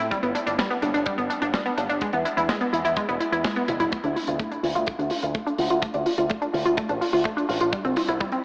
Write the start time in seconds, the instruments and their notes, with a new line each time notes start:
0.11 synth arpeggio sound G3, kick, closed hi-hat
0.23 picked electric bass G1, synth arpeggio sound B3, closed hi-hat
0.35 synth arpeggio sound D4, closed hi-hat
0.47 picked electric bass G1, synth arpeggio sound D4, closed hi-hat
0.58 synth arpeggio sound G3, kick, snare, closed hi-hat
0.70 synth arpeggio sound B3, closed hi-hat
0.82 picked electric bass G1, synth arpeggio sound D4, closed hi-hat
0.94 picked electric bass G1, synth arpeggio sound D4, closed hi-hat
1.06 synth arpeggio sound G3, kick, closed hi-hat
1.18 picked electric bass G1, synth arpeggio sound B3, closed hi-hat
1.30 synth arpeggio sound D4, closed hi-hat
1.42 picked electric bass G1, synth arpeggio sound D4, closed hi-hat
1.54 synth arpeggio sound G3, kick, snare, closed hi-hat
1.66 synth arpeggio sound B3, closed hi-hat
1.78 picked electric bass G1, synth arpeggio sound D4, closed hi-hat
1.89 picked electric bass G1, synth arpeggio sound D4, closed hi-hat
2.01 synth arpeggio sound G#3, kick, closed hi-hat
2.13 picked electric bass E2, synth arpeggio sound B3, closed hi-hat
2.25 synth arpeggio sound E4, closed hi-hat
2.37 picked electric bass E2, synth arpeggio sound E4, closed hi-hat
2.49 synth arpeggio sound G#3, kick, snare, closed hi-hat
2.61 synth arpeggio sound B3, closed hi-hat
2.73 picked electric bass E2, synth arpeggio sound E4, closed hi-hat
2.85 picked electric bass E2, synth arpeggio sound E4, closed hi-hat
2.96 synth arpeggio sound G#3, kick, closed hi-hat
3.09 picked electric bass E1, synth arpeggio sound B3, closed hi-hat
3.21 synth arpeggio sound E4, closed hi-hat
3.32 picked electric bass E2, synth arpeggio sound E4, closed hi-hat
3.44 synth arpeggio sound G#3, kick, snare, closed hi-hat
3.56 synth arpeggio sound B3, closed hi-hat
3.68 picked electric bass E1, synth arpeggio sound E4, closed hi-hat, high tom
3.80 picked electric bass E1, synth arpeggio sound E4, closed hi-hat, mid tom
3.92 synth arpeggio sound A3, kick, closed hi-hat, mid tom
4.04 picked electric bass D2, synth arpeggio sound D4, closed hi-hat
4.16 synth arpeggio sound F4, open hi-hat
4.27 picked electric bass D2, synth arpeggio sound F4, closed hi-hat
4.39 synth arpeggio sound A3, kick, closed hi-hat, mid tom
4.51 synth arpeggio sound D4, closed hi-hat
4.63 picked electric bass D2, synth arpeggio sound F4, open hi-hat
4.75 picked electric bass D2, synth arpeggio sound F4, closed hi-hat
4.86 synth arpeggio sound A3, kick, closed hi-hat, mid tom
4.99 picked electric bass D2, synth arpeggio sound D4, closed hi-hat
5.10 synth arpeggio sound F4, open hi-hat
5.23 picked electric bass D2, synth arpeggio sound F4, closed hi-hat
5.35 synth arpeggio sound A3, kick, closed hi-hat, mid tom
5.47 synth arpeggio sound D4, closed hi-hat
5.58 picked electric bass D2, synth arpeggio sound F4, open hi-hat
5.70 picked electric bass D2, synth arpeggio sound F4, closed hi-hat
5.82 synth arpeggio sound A3, kick, closed hi-hat, mid tom
5.94 picked electric bass D2, synth arpeggio sound D4, closed hi-hat
6.06 synth arpeggio sound F4, open hi-hat
6.18 picked electric bass D2, synth arpeggio sound F4, closed hi-hat
6.30 synth arpeggio sound A3, kick, closed hi-hat, mid tom
6.42 synth arpeggio sound D4, closed hi-hat
6.54 picked electric bass D2, synth arpeggio sound F4, open hi-hat
6.65 picked electric bass D2, synth arpeggio sound F4, closed hi-hat
6.77 synth arpeggio sound A3, kick, closed hi-hat, mid tom
6.89 picked electric bass A1, synth arpeggio sound D4, closed hi-hat
7.01 synth arpeggio sound F4, open hi-hat
7.13 picked electric bass D2, synth arpeggio sound F4, open hi-hat
7.24 synth arpeggio sound A3, kick, mid tom
7.37 synth arpeggio sound D4, closed hi-hat
7.49 picked electric bass A1, synth arpeggio sound F4, open hi-hat
7.60 picked electric bass A1, synth arpeggio sound F4, closed hi-hat
7.73 synth arpeggio sound G3, kick, closed hi-hat, mid tom
7.85 picked electric bass C2, synth arpeggio sound C4, closed hi-hat
7.96 synth arpeggio sound E4, open hi-hat, mid tom
8.08 picked electric bass C2, synth arpeggio sound E4, closed hi-hat
8.20 synth arpeggio sound G3, kick, closed hi-hat, mid tom
8.32 synth arpeggio sound C4, closed hi-hat